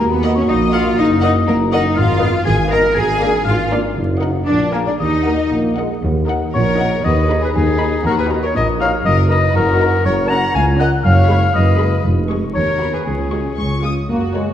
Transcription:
Already playing: D#2
0.00 D#2 A#3 F#4
0.11 B3 B4
0.22 A#4 D#5 F#5
0.35 C#4 C#5 C#6
0.48 A#1 D#4 D#5 D#6
0.73 F4 A#4 D#5 F5 F#5 F6
0.97 F#1 D#4 D#5 D#6
1.21 D#4 A#4 D#5 F#5 D#6
1.47 F#1 A#3 A#4 A#5
1.72 D#4 A#4 D#5 F#5 D#6
1.96 G#1 F4 F5 F6
2.21 B3 D#4 B4 D#5 F5
2.45 G#1 G#4 G#5 G#6
2.69 B3 D#4 A#4 B4 D#5 F5 A#5 A#6
2.94 G#1 G#4 G#5 G#6
3.19 A#3 D4 A#4 D5 F5
3.45 G#1 F4 F5 F6
3.71 A#3 D4 A#4 D5 F5
3.96 F#1
4.21 A#3 D#4 A#4 D#5 F#5
4.46 A#1 D4 D5 D6
4.72 A#3 G#4 A#4 F5 G#5 A#5
4.86 D4 D5 D6
4.99 D#2 D#4 D#5 D#6
5.24 A#3 F#4 A#4 D#5 F#5
5.51 A#1 A#3
5.77 G#3 A#4 D#5 F#5
6.04 D#2
6.28 D#4 A#4 F#5
6.54 A#1 A#2 A#4 C#5 C#6
6.78 D#4 A#4 F#5
7.04 D#2 B4 D#5 D#6
7.29 D#4 G#4 B5
7.41 G#4 B4 B5
7.54 D#2 D#4 G#4 G#5
7.79 D#4 G#4 B5
8.05 D#2 F#4 A#4 A#5
8.17 G#4 B4
8.30 D#4 F#4 A#5
8.43 A#4 C#5 C#6
8.55 A#1 A#2 A#4 D#5 D#6
8.80 D#4 F#4 C#5 F5 A#5 F6
9.04 F#1 F#2 A#4 D#5 D#6
9.29 D#4 A#4 B4 D#5 A#5 D#6
9.54 F#1 F#2 F#4 A#4 A#5
9.80 D#4 A#4 A#5
10.05 F#1 F#2 A#4 C#5 C#6
10.30 C#4 A#4 F#5 A#5 A#6
10.54 C#2 F5 G#5 G#6
10.79 C#4 A#4 D#5 F#5 A#5 F#6
11.03 F#1 F#2 C#5 F5 F6
11.29 G#3 G#4 B5
11.54 F#1 F#2 B4 D#5 D#6
11.79 G#3 G#4 B5
12.04 F1 F2
12.29 G#3 G#4 C#6
12.54 D#2 A#4 C#5 C#6
12.80 B3 F#4 B5
12.92 G#4 B4 B5
13.05 C#2 C#4 G#4 G#5
13.32 G#3 F#4 C#6
13.58 C#2 C#6
13.83 G#3 F4 D#6
14.09 F#1 F#2 A#3 F#4
14.34 G#3 F#4 A#4 C#5

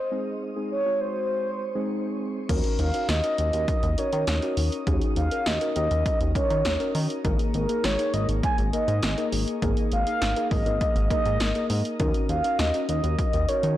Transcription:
Already playing: C5
0.12 G#3 C4 D#4 G#4
0.56 G#3 C4 D#4 G#4
0.71 C#5
0.86 G#3 C4 D#4 F#4
1.01 C5
1.75 G#3 C4 D#4 G#4
2.49 D#2 C#4 D#4 F#4 A#4, kick, closed hi-hat, crash
2.64 closed hi-hat
2.79 D#2 F5, closed hi-hat
2.94 C#4 D#4 F#4 A#4, closed hi-hat
3.09 D#2 D#5, snare, closed hi-hat
3.24 C#4 D#4 F#4 A#4, closed hi-hat
3.38 D#2 D#5, closed hi-hat
3.53 D#2, closed hi-hat
3.68 D#5, kick, closed hi-hat
3.83 D#2, closed hi-hat
3.98 C#4 D#4 F#4 A#4 C#5, closed hi-hat
4.13 D#3, closed hi-hat
4.27 D#2, snare, closed hi-hat
4.42 C#4 D#4 F#4 A#4, closed hi-hat
4.57 D#2, open hi-hat
4.72 closed hi-hat
4.87 D#2 C#4 D#4 F#4 G#4, kick, closed hi-hat
5.01 closed hi-hat
5.16 D#2 F5, closed hi-hat
5.31 C#4 D#4 F#4 A#4, closed hi-hat
5.46 D#2 D#5, snare, closed hi-hat
5.61 C#4 D#4 F#4 A#4, closed hi-hat
5.76 D#2 D#5, closed hi-hat
5.91 D#2, closed hi-hat
6.06 D#5, kick, closed hi-hat
6.21 D#2, closed hi-hat
6.35 C#4 D#4 F#4 A#4 C#5, kick, closed hi-hat
6.50 D#3, closed hi-hat
6.65 D#2, snare, closed hi-hat
6.80 C#4 D#4 F#4 A#4, closed hi-hat
6.95 D#3, open hi-hat
7.10 closed hi-hat
7.25 G#1 A#3 D#4 G#4 A#4, kick, closed hi-hat
7.39 closed hi-hat
7.54 G#1 A#4, closed hi-hat
7.69 A#3 D#4 G#4 A#4, closed hi-hat
7.84 G#1 C#5, snare, closed hi-hat
7.99 A#3 D#4 G#4 A#4, closed hi-hat
8.14 G#1 D#5, closed hi-hat
8.29 G#1, closed hi-hat
8.43 G#5, kick, closed hi-hat
8.58 G#1, closed hi-hat
8.73 A#3 D#4 G#4 A#4 D#5, closed hi-hat
8.88 G#2, closed hi-hat
9.03 G#1, snare, closed hi-hat
9.18 A#3 D#4 G#4 A#4, closed hi-hat
9.32 G#1, open hi-hat
9.48 closed hi-hat
9.62 G#1 A#3 D#4 G#4 A#4, kick, closed hi-hat
9.77 closed hi-hat
9.92 G#1 F5, closed hi-hat
10.07 A#3 D#4 G#4 A#4, closed hi-hat
10.22 G#1, snare, closed hi-hat
10.36 A#3 D#4 G#4 A#4, closed hi-hat
10.51 G#1 D#5, kick, open hi-hat
10.66 G#1, closed hi-hat
10.81 D#5, kick, closed hi-hat
10.96 G#1, closed hi-hat
11.11 A#3 D#4 G#4 A#4 D#5, kick, closed hi-hat
11.26 G#2, closed hi-hat
11.40 G#1, snare, closed hi-hat
11.55 A#3 D#4 G#4 A#4, closed hi-hat
11.70 G#2, open hi-hat
11.85 closed hi-hat
12.00 D#2 C#4 D#4 F#4 A#4, kick, closed hi-hat
12.14 closed hi-hat
12.29 D#2 F5, closed hi-hat
12.44 C#4 D#4 F#4 A#4, closed hi-hat
12.59 D#2 D#5, snare, closed hi-hat
12.74 C#4 D#4 F#4 A#4, closed hi-hat
12.89 D#2 D#5, closed hi-hat
13.04 D#2, closed hi-hat
13.19 D#5, kick, closed hi-hat
13.33 D#2, closed hi-hat
13.48 C#4 D#4 F#4 A#4 C#5, closed hi-hat
13.63 D#3, closed hi-hat

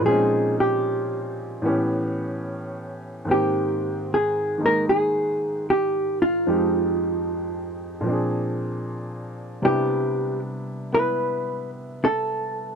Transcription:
0.00 A#2 F3 G#3
0.06 C4 C#4 G#4
0.11 D#4
0.60 G4
1.62 A2 E3 B3 C#4
1.67 G4
3.25 G#2 D#3 A#3 C4
3.31 G4 G5
4.14 G#4
4.58 D#3 G#3 A#3
4.62 D#4 A#4
4.89 G#4
5.70 G4
6.22 F4
6.47 F2 F3 G#3 D#4 G4
8.01 A#2 F3
8.06 C4 D4
8.12 G#4
9.62 C3 G3 B3 D4 E4 G4
10.92 B3 E4 B4
12.05 A4

